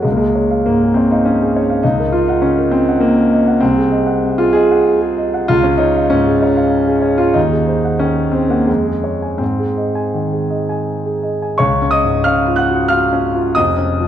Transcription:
0.02 1.79 C#2 soft
0.02 0.10 G#3 medium
0.12 0.19 A#3 medium
0.17 0.65 G#3 medium
0.21 0.46 G#4 soft
0.35 0.60 C#5 soft
0.51 0.75 F5 soft
0.66 0.90 G#2 soft
0.66 0.95 A#3 medium
0.83 1.05 G#4 soft
0.94 1.09 C4 medium
0.94 1.20 C#5 soft
1.11 1.25 D#4 medium
1.11 1.58 F5 soft
1.25 1.84 C#4 medium
1.42 1.64 G#4 soft
1.56 1.79 C#5 soft
1.70 1.84 F5 soft
1.83 3.59 C#2 medium
1.83 2.14 D#4 medium
2.00 2.24 A#4 soft
2.12 2.28 F4 medium
2.12 2.38 D#5 soft
2.28 2.43 D#4 medium
2.28 2.53 F#5 soft
2.42 2.68 C#3 soft
2.42 2.73 C#4 medium
2.58 2.82 A#4 soft
2.71 3.02 C4 medium
2.71 2.98 D#5 medium
2.88 3.36 F#5 soft
3.00 3.61 A#3 medium
3.18 3.42 A#4 soft
3.33 3.56 D#5 medium
3.48 3.62 F#5 soft
3.60 5.45 C2 medium
3.60 4.38 C4 medium
3.78 4.02 G#4 soft
3.92 4.17 D#5 soft
4.07 4.32 F#5 soft
4.24 4.49 C3 medium
4.38 4.54 F4 medium
4.38 4.51 G#4 soft
4.53 5.00 G#4 medium
4.53 4.80 D#5 soft
4.71 5.21 F#5 soft
5.02 5.27 G#4 medium
5.18 5.43 D#5 soft
5.34 5.49 F#5 soft
5.48 7.32 C#2 medium
5.48 5.64 F4 medium
5.63 5.80 C#4 medium
5.63 5.90 G#4 soft
5.77 6.10 D#4 medium
5.77 6.05 C#5 soft
5.97 6.21 F5 soft
6.10 6.36 G#2 medium
6.10 7.03 C#4 medium
6.27 6.52 G#4 soft
6.42 6.67 C#5 soft
6.57 7.07 F5 soft
6.88 7.13 G#4 soft
7.02 7.28 C#5 soft
7.18 7.35 F4 medium
7.18 7.35 F5 soft
7.34 8.64 D#2 medium
7.34 7.99 D#4 medium
7.52 7.77 G#4 soft
7.67 7.93 C5 soft
7.85 8.10 F#5 soft
7.99 8.27 D#3 soft
7.99 8.33 C#4 medium
8.17 8.44 G#4 soft
8.32 8.50 C4 medium
8.32 8.61 C5 soft
8.49 8.67 A#3 medium
8.49 8.68 F#5 soft
8.67 9.38 F2 medium
8.67 9.39 G#3 medium
8.87 9.15 G#4 soft
9.04 9.33 C#5 soft
9.22 9.40 G#5 soft
9.38 11.56 G#2 soft
9.38 11.23 C4 medium
9.59 9.89 G#4 soft
9.78 10.07 D#5 soft
9.95 10.25 G#5 soft
10.14 10.43 D#3 soft
10.33 10.62 G#4 soft
10.51 10.80 D#5 soft
10.69 11.28 G#5 soft
11.06 11.36 G#4 soft
11.23 11.53 D#5 soft
11.42 11.60 G#5 soft
11.58 13.52 C#2 medium
11.58 11.91 C#5 medium
11.58 11.93 C#6 medium
11.82 12.17 C#4 soft
11.91 12.23 D#5 medium
11.91 12.25 D#6 medium
12.04 12.39 G#2 soft
12.24 12.60 C#4 soft
12.24 12.56 F5 medium
12.24 12.57 F6 medium
12.47 12.82 F4 soft
12.56 12.88 F#5 medium
12.56 12.90 F#6 medium
12.70 12.91 F#4 soft
12.88 13.26 F4 medium
12.88 13.52 F5 medium
12.88 13.55 F6 medium
13.13 13.48 C#4 medium
13.35 13.56 F4 medium
13.55 14.08 F1 medium
13.55 14.08 F2 medium
13.55 14.08 D#5 medium
13.55 14.08 D#6 medium
13.78 14.08 C#4 soft
14.00 14.08 F3 medium

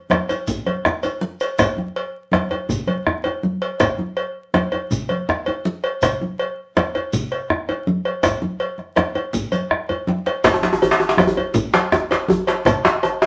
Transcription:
0.10 bombo rim loud
0.10 cowbell medium
0.10 djembe slap medium
0.10 high conga medium
0.10 djembe bass medium
0.29 bombo rim soft
0.29 cowbell soft
0.29 djembe tone medium
0.29 shekere soft
0.47 bombo rim soft
0.47 bombo low medium
0.47 djembe slap soft
0.47 low conga medium
0.47 shekere medium
0.66 bombo rim soft
0.66 cowbell soft
0.66 high conga medium
0.85 bombo rim loud
0.85 djembe slap medium
0.85 high conga soft
0.85 djembe bass medium
1.03 bombo rim soft
1.03 cowbell soft
1.03 djembe slap soft
1.03 high conga soft
1.03 djembe tone medium
1.03 shekere soft
1.21 high conga medium
1.40 cowbell soft
1.40 djembe slap soft
1.40 shekere soft
1.58 bombo rim loud
1.58 bombo low loud
1.58 cowbell medium
1.58 djembe slap medium
1.58 low conga medium
1.58 djembe bass medium
1.58 shekere medium
1.77 high conga medium
1.77 djembe tone medium
1.96 cowbell soft
2.32 bombo rim medium
2.32 cowbell soft
2.32 djembe slap medium
2.32 high conga medium
2.32 djembe bass medium
2.51 bombo rim soft
2.51 cowbell soft
2.51 djembe tone medium
2.69 bombo rim soft
2.69 bombo low medium
2.69 low conga medium
2.69 shekere medium
2.87 bombo rim soft
2.87 cowbell soft
2.87 high conga medium
3.07 bombo rim medium
3.07 djembe bass medium
3.24 cowbell soft
3.24 high conga soft
3.24 djembe tone medium
3.43 high conga medium
3.62 cowbell soft
3.80 bombo rim medium
3.80 bombo low medium
3.80 cowbell medium
3.80 djembe slap medium
3.80 low conga medium
3.80 djembe bass medium
3.80 shekere medium
3.98 high conga soft
3.98 djembe tone medium
4.17 cowbell medium
4.54 bombo rim medium
4.54 cowbell medium
4.54 djembe slap medium
4.54 high conga medium
4.54 djembe bass medium
4.72 bombo rim soft
4.72 cowbell soft
4.72 djembe tone medium
4.91 bombo rim soft
4.91 bombo low medium
4.91 low conga medium
4.91 shekere medium
5.09 bombo rim soft
5.09 cowbell soft
5.09 high conga medium
5.29 bombo rim medium
5.29 djembe slap medium
5.29 djembe bass medium
5.46 cowbell soft
5.46 high conga soft
5.46 djembe tone medium
5.65 high conga medium
5.84 cowbell soft
6.02 bombo rim medium
6.02 bombo low medium
6.02 cowbell medium
6.02 djembe slap medium
6.02 low conga medium
6.02 djembe bass medium
6.02 shekere medium
6.21 high conga medium
6.21 djembe tone soft
6.39 cowbell soft
6.77 bombo rim medium
6.77 cowbell soft
6.77 djembe slap medium
6.77 high conga medium
6.77 djembe bass medium
6.95 bombo rim soft
6.95 cowbell soft
6.95 djembe tone medium
7.13 bombo rim soft
7.13 bombo low medium
7.13 low conga medium
7.13 shekere medium
7.32 bombo rim soft
7.32 cowbell soft
7.50 bombo rim medium
7.50 djembe bass medium
7.69 cowbell soft
7.69 high conga soft
7.69 djembe tone medium
7.87 high conga medium
8.05 cowbell soft
8.23 bombo rim loud
8.23 bombo low loud
8.23 cowbell medium
8.23 djembe slap medium
8.23 low conga medium
8.23 djembe bass medium
8.23 shekere medium
8.42 djembe slap soft
8.42 djembe tone medium
8.42 high conga medium
8.60 cowbell soft
8.78 bombo rim soft
8.78 djembe slap soft
8.78 high conga soft
8.96 bombo rim medium
8.96 cowbell soft
8.96 djembe slap medium
8.96 high conga medium
8.96 djembe bass medium
9.15 bombo rim soft
9.15 cowbell soft
9.15 djembe tone medium
9.15 high conga soft
9.33 bombo low medium
9.33 low conga medium
9.33 shekere medium
9.52 bombo rim soft
9.52 cowbell soft
9.52 high conga medium
9.52 shekere soft
9.71 bombo rim medium
9.71 djembe bass soft
9.89 cowbell soft
9.89 high conga soft
9.89 djembe bass soft
10.07 djembe slap medium
10.07 high conga medium
10.26 bombo rim soft
10.26 cowbell medium
10.26 djembe slap medium
10.26 high conga soft
10.44 bombo rim loud
10.44 bombo low loud
10.44 cowbell medium
10.44 djembe slap loud
10.44 djembe slap medium
10.44 low conga medium
10.44 djembe bass medium
10.44 shekere soft
10.54 djembe tone medium
10.62 djembe slap medium
10.62 high conga medium
10.62 djembe tone medium
10.73 djembe tone medium
10.82 cowbell medium
10.82 djembe bass medium
10.91 djembe slap loud
11.00 djembe tone medium
11.09 djembe slap medium
11.17 bombo rim loud
11.17 cowbell medium
11.17 djembe slap medium
11.17 high conga medium
11.17 djembe tone medium
11.17 djembe bass medium
11.27 djembe bass medium
11.37 bombo rim soft
11.37 cowbell soft
11.37 djembe tone medium
11.54 bombo rim soft
11.54 bombo low loud
11.54 low conga medium
11.54 shekere medium
11.74 cowbell soft
11.74 djembe slap loud
11.74 high conga medium
11.92 bombo rim loud
11.92 djembe slap medium
11.92 djembe tone medium
11.92 djembe bass medium
12.10 cowbell medium
12.10 djembe slap medium
12.10 high conga soft
12.10 djembe tone medium
12.28 high conga medium
12.28 djembe bass medium
12.47 cowbell medium
12.47 djembe slap medium
12.65 bombo rim loud
12.65 bombo low loud
12.65 cowbell medium
12.65 djembe slap medium
12.65 djembe tone medium
12.65 low conga medium
12.65 djembe bass medium
12.65 shekere medium
12.85 djembe slap loud
12.85 high conga medium
12.85 djembe tone medium
13.03 cowbell medium
13.03 djembe tone medium
13.22 djembe slap medium

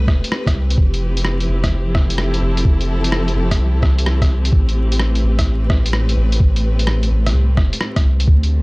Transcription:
0.00 0.78 A2 medium
0.00 0.78 A3 medium
0.00 8.62 C4 medium
0.00 8.62 G4 medium
0.00 2.31 B4 medium
0.08 0.22 E1 loud
0.08 kick loud
0.08 cross-stick medium
0.24 closed hi-hat medium
0.32 cross-stick loud
0.47 kick loud
0.47 cross-stick medium
0.47 closed hi-hat soft
0.54 0.76 C2 medium
0.71 closed hi-hat medium
0.77 1.47 F1 loud
0.77 4.52 F3 medium
0.77 kick loud
0.94 5.97 E4 medium
0.94 closed hi-hat soft
1.17 closed hi-hat medium
1.25 cross-stick loud
1.40 closed hi-hat soft
1.48 2.41 F1 medium
1.64 kick medium
1.64 cross-stick medium
1.64 closed hi-hat medium
1.91 5.15 A4 medium
1.91 kick loud
1.91 cross-stick medium
2.10 closed hi-hat medium
2.18 cross-stick loud
2.34 closed hi-hat soft
2.42 2.64 F1 loud
2.57 closed hi-hat medium
2.65 3.35 F1 loud
2.65 kick loud
2.81 closed hi-hat soft
3.04 closed hi-hat medium
3.12 cross-stick loud
3.28 closed hi-hat soft
3.35 3.58 F1 medium
3.51 kick medium
3.51 cross-stick medium
3.51 closed hi-hat medium
3.59 4.52 C2 medium
3.82 kick loud
3.82 cross-stick medium
3.98 closed hi-hat medium
4.06 cross-stick loud
4.21 kick loud
4.21 cross-stick medium
4.21 closed hi-hat soft
4.45 closed hi-hat medium
4.53 5.22 A1 loud
4.53 8.28 A2 medium
4.53 kick loud
4.69 closed hi-hat soft
4.76 8.62 A3 medium
4.92 8.28 B4 medium
4.92 closed hi-hat medium
4.99 cross-stick loud
5.15 closed hi-hat soft
5.23 6.16 A1 medium
5.39 kick medium
5.39 cross-stick medium
5.39 closed hi-hat medium
5.70 kick loud
5.70 cross-stick medium
5.86 closed hi-hat medium
5.93 cross-stick loud
6.09 closed hi-hat soft
6.17 6.39 A1 loud
6.32 closed hi-hat medium
6.40 7.10 A1 loud
6.40 kick loud
6.56 closed hi-hat soft
6.79 closed hi-hat medium
6.87 cross-stick loud
7.03 closed hi-hat soft
7.11 7.33 A1 medium
7.26 cross-stick medium
7.26 closed hi-hat medium
7.34 7.59 C2 loud
7.57 7.72 E1 loud
7.57 kick loud
7.57 cross-stick medium
7.73 closed hi-hat medium
7.81 cross-stick loud
7.96 kick loud
7.96 cross-stick medium
7.96 closed hi-hat soft
8.04 8.27 C2 medium
8.20 closed hi-hat medium
8.27 8.62 D2 loud
8.27 8.62 D3 medium
8.27 kick loud
8.43 closed hi-hat soft

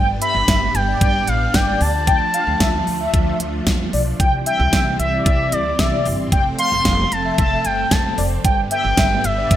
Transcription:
0.00 0.14 G1 loud
0.00 1.79 G3 medium
0.00 1.79 B3 medium
0.00 4.16 D4 medium
0.00 0.10 G5 loud
0.22 0.37 E5 medium
0.22 0.76 B5 loud
0.22 closed hi-hat medium
0.35 0.44 G1 loud
0.48 0.67 G1 loud
0.48 0.56 E5 medium
0.48 kick loud
0.48 snare loud
0.48 closed hi-hat medium
0.75 0.93 G1 loud
0.75 1.01 G5 loud
0.75 closed hi-hat medium
0.88 1.25 D5 medium
1.01 1.20 G1 loud
1.01 1.30 G5 loud
1.01 kick loud
1.01 closed hi-hat medium
1.27 1.46 A1 medium
1.27 1.56 F5 medium
1.27 closed hi-hat medium
1.54 1.73 G1 medium
1.54 1.92 D5 medium
1.54 1.83 G5 medium
1.54 kick loud
1.54 snare loud
1.54 closed hi-hat medium
1.81 2.18 D2 loud
1.81 4.17 F3 medium
1.81 4.17 A3 medium
1.81 3.40 A5 loud
1.81 open hi-hat medium
2.07 2.23 G5 loud
2.07 kick loud
2.07 closed hi-hat medium
2.34 2.49 F5 medium
2.34 closed hi-hat medium
2.47 2.56 D2 loud
2.60 2.79 D2 loud
2.60 2.68 E5 medium
2.60 kick loud
2.60 snare loud
2.60 closed hi-hat medium
2.87 3.06 D2 medium
2.87 open hi-hat medium
3.00 3.38 E5 medium
3.14 3.32 D2 loud
3.14 kick loud
3.14 closed hi-hat medium
3.40 3.59 D2 medium
3.40 closed hi-hat medium
3.67 3.85 E2 loud
3.67 kick loud
3.67 snare loud
3.67 closed hi-hat medium
3.93 4.12 B1 medium
3.93 4.01 D5 medium
3.93 open hi-hat medium
4.20 4.38 C2 loud
4.20 6.30 E3 medium
4.20 6.30 G3 medium
4.20 8.41 C4 medium
4.20 4.35 G5 loud
4.20 kick loud
4.20 closed hi-hat medium
4.46 4.62 E5 medium
4.46 4.96 G5 loud
4.46 closed hi-hat medium
4.60 4.69 C2 loud
4.73 4.91 C2 loud
4.73 4.81 E5 medium
4.73 kick loud
4.73 snare loud
4.73 closed hi-hat medium
4.99 5.18 C2 medium
4.99 5.24 E5 medium
4.99 closed hi-hat medium
5.13 5.50 D5 medium
5.26 5.45 C2 loud
5.26 5.54 E5 medium
5.26 kick loud
5.26 closed hi-hat medium
5.52 5.71 D2 medium
5.52 5.81 D5 medium
5.52 closed hi-hat medium
5.79 6.07 C2 medium
5.79 6.17 D5 medium
5.79 6.06 E5 medium
5.79 kick loud
5.79 snare loud
5.79 closed hi-hat medium
6.06 6.24 G1 loud
6.06 open hi-hat medium
6.32 6.51 F1 loud
6.32 8.42 F3 medium
6.32 8.42 A3 medium
6.32 6.47 G5 loud
6.32 kick loud
6.32 closed hi-hat medium
6.59 6.74 F5 medium
6.59 7.14 C6 loud
6.59 closed hi-hat medium
6.72 6.81 F1 loud
6.85 7.04 F1 loud
6.85 6.93 F5 medium
6.85 kick loud
6.85 snare loud
6.85 closed hi-hat medium
7.12 7.30 F1 medium
7.12 7.38 A5 loud
7.12 closed hi-hat medium
7.25 7.62 E5 medium
7.38 7.57 F1 loud
7.38 7.67 A5 loud
7.38 kick loud
7.38 closed hi-hat medium
7.65 7.83 G1 medium
7.65 7.93 G5 medium
7.65 closed hi-hat medium
7.91 8.10 F1 loud
7.91 8.18 A5 medium
7.91 kick loud
7.91 snare loud
7.91 closed hi-hat medium
8.18 8.37 F1 loud
8.18 8.26 D5 medium
8.18 open hi-hat medium
8.44 8.63 G1 loud
8.44 9.56 D3 medium
8.44 9.56 G3 medium
8.44 9.56 B3 medium
8.44 8.60 G5 loud
8.44 kick loud
8.44 closed hi-hat medium
8.71 8.87 E5 medium
8.71 9.26 G5 loud
8.71 closed hi-hat medium
8.85 8.94 G1 loud
8.97 9.16 G1 medium
8.97 9.06 E5 medium
8.97 kick loud
8.97 snare loud
8.97 closed hi-hat medium
9.24 9.43 G1 loud
9.24 9.56 E5 loud
9.24 closed hi-hat medium
9.38 9.56 D5 medium
9.51 9.56 G1 loud
9.51 kick loud
9.51 closed hi-hat medium

